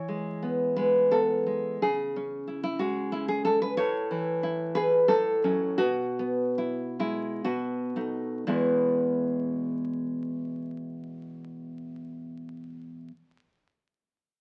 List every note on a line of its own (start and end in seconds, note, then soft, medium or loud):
0.00 1.77 E3 medium
0.00 0.73 C#5 loud
0.08 0.77 G#3 soft
0.43 1.11 B3 medium
0.76 1.45 G#3 medium
0.76 1.11 B4 medium
1.11 1.81 B3 medium
1.11 1.78 A4 loud
1.46 1.81 G#3 medium
1.82 3.74 C#3 medium
1.82 2.60 G#4 loud
2.16 3.12 C#4 medium
2.47 2.62 E4 medium
2.63 2.79 E4 medium
2.79 3.46 G#3 medium
2.79 3.10 F#4 medium
3.12 3.78 C#4 medium
3.12 3.28 E4 medium
3.28 3.44 G#4 loud
3.45 3.79 G#3 medium
3.45 3.61 A4 loud
3.62 3.77 B4 loud
3.77 5.07 A2 medium
3.77 4.73 C#5 loud
4.11 5.11 E3 medium
4.43 4.76 E4 medium
4.75 5.11 G#4 medium
4.75 5.08 B4 loud
5.08 5.79 A2 medium
5.08 5.78 A4 loud
5.44 5.78 F#3 medium
5.44 5.77 C#4 medium
5.78 7.40 B2 medium
5.78 6.94 F#4 loud
6.19 7.45 B3 medium
6.58 6.98 E4 medium
6.99 7.45 G#3 medium
6.99 7.43 E4 medium
7.44 8.44 B2 medium
7.44 8.43 F#4 medium
7.96 8.43 A3 medium
7.96 8.43 D#4 medium
8.47 13.10 E2 medium
8.47 13.09 B2 medium
8.47 13.10 G#3 medium
8.47 13.10 B3 medium
8.47 13.10 E4 medium